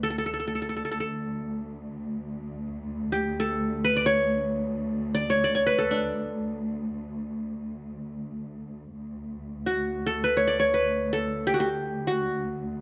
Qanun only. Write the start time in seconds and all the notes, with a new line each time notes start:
Already playing: B4
0.03 A4
0.18 A4
0.26 A4
0.34 A4
0.40 A4
0.48 A4
0.55 A4
0.62 A4
0.69 A4
0.77 A4
0.85 A4
0.92 A4
1.00 A4
3.12 G4
3.40 A4
3.84 B4
3.97 D5
4.06 C#5
5.15 D5
5.30 C#5
5.44 D5
5.55 C#5
5.66 B4
5.78 A4
5.91 D4
9.66 F#4
10.06 A4
10.24 B4
10.37 C#5
10.47 D5
10.60 C#5
10.74 B4
11.13 A4
11.47 G4
11.54 F#4
11.60 G4
12.07 F#4